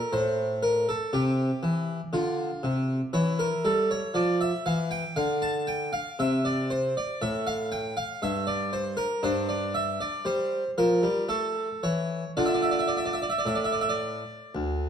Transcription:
0.00 0.12 A#4 medium
0.13 0.85 A2 medium
0.13 0.63 C5 medium
0.63 0.87 A#4 medium
0.89 1.13 A4 medium
1.13 1.49 C3 medium
1.13 1.99 G4 medium
1.63 1.99 E3 medium
2.13 2.49 D3 medium
2.13 2.63 F4 medium
2.63 2.99 C3 medium
3.13 3.49 E3 medium
3.13 5.12 E4 soft
3.13 3.39 C#5 loud
3.39 3.64 A#4 medium
3.65 4.01 G3 medium
3.65 3.90 A4 medium
3.91 4.15 C#5 medium
4.14 4.51 F3 medium
4.14 4.40 D5 loud
4.41 4.66 E5 medium
4.66 5.02 E3 medium
4.66 4.91 F5 medium
4.91 5.16 G5 loud
5.16 5.90 D3 medium
5.16 5.41 F5 loud
5.42 5.67 A5 loud
5.67 5.92 G5 loud
5.93 6.18 F5 medium
6.19 6.92 C3 medium
6.19 6.44 E5 loud
6.45 6.70 D5 medium
6.70 6.95 C5 medium
6.97 7.21 D5 medium
7.22 7.94 A2 medium
7.22 7.46 E5 loud
7.47 7.71 F5 loud
7.72 7.96 G5 loud
7.97 8.22 F5 loud
8.22 8.95 G2 medium
8.22 8.47 E5 loud
8.47 8.72 D5 loud
8.73 8.98 C5 medium
8.97 9.23 A#4 loud
9.23 9.97 G2 medium
9.23 10.22 D4 medium
9.23 9.49 C5 loud
9.49 9.75 D5 medium
9.74 10.00 E5 loud
10.01 10.26 D5 loud
10.25 10.62 G3 medium
10.25 10.69 C5 medium
10.78 11.02 F3 medium
10.78 11.22 A#4 medium
11.03 11.28 G3 medium
11.29 11.67 A3 medium
11.29 11.83 A4 medium
11.83 12.22 E3 medium
11.83 12.30 C#5 medium
12.37 13.13 D3 medium
12.37 13.24 D4 soft
12.37 13.24 F4 medium
12.37 12.46 D5 medium
12.46 12.54 E5 medium
12.54 12.63 D5 medium
12.62 12.71 E5 medium
12.71 12.80 D5 medium
12.79 12.88 E5 medium
12.88 12.96 D5 medium
12.97 13.05 E5 medium
13.05 13.14 D5 medium
13.13 13.22 E5 medium
13.22 13.31 D5 medium
13.30 13.39 E5 medium
13.38 13.47 D5 medium
13.46 14.22 A2 medium
13.46 13.55 E5 medium
13.55 13.64 D5 medium
13.64 13.73 E5 medium
13.72 13.81 D5 medium
13.81 13.90 E5 medium
13.89 14.54 D5 medium
14.55 14.89 D2 medium

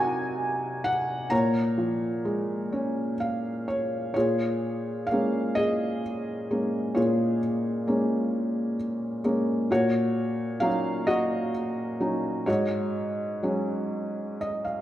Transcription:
0.00 1.27 C3 medium
0.00 0.81 F#3 soft
0.00 1.27 D#4 soft
0.00 1.27 F#4 medium
0.00 1.32 A#4 soft
0.00 1.32 D#5 medium
0.00 0.87 G#5 medium
0.84 1.32 F#5 medium
1.30 4.11 A#2 medium
1.30 3.15 C#5 medium
1.30 3.15 A#5 medium
1.78 3.63 F3 soft
2.25 4.11 G#3 soft
2.73 4.11 C#4 soft
3.20 3.64 F5 medium
3.68 4.12 C#5 medium
4.14 6.92 A#2 medium
4.14 5.53 F4 soft
4.14 5.53 G#4 soft
4.14 5.05 C#5 medium
5.07 5.57 F5 medium
5.11 6.01 G#3 soft
5.11 6.01 A#3 soft
5.11 6.02 C#4 soft
5.55 6.91 G#4 medium
5.55 6.99 D#5 medium
6.51 7.39 G#3 soft
6.51 7.39 A#3 soft
6.51 7.39 C#4 soft
6.95 9.66 A#2 medium
6.95 9.20 F4 soft
6.95 9.21 G#4 soft
6.95 9.20 C#5 medium
7.87 8.76 G#3 soft
7.87 8.76 A#3 soft
7.87 8.76 C#4 soft
9.24 9.69 G#3 soft
9.24 9.69 A#3 soft
9.24 9.69 C#4 soft
9.71 12.44 A#2 medium
9.71 11.04 F#4 medium
9.71 10.65 C#5 medium
10.60 11.51 F#3 soft
10.60 11.51 C#4 soft
10.60 11.52 D#4 soft
10.60 11.08 F5 medium
11.07 12.43 F#4 medium
11.07 12.51 D#5 medium
12.00 12.46 F#3 soft
12.00 12.46 C#4 soft
12.00 12.46 D#4 soft
12.46 14.81 G#2 medium
12.46 14.81 F#4 soft
12.46 14.81 C#5 medium
13.43 14.37 F#3 soft
13.43 14.37 G#3 soft
13.43 14.38 C#4 soft
14.41 14.63 D#5 medium
14.65 14.81 F5 medium

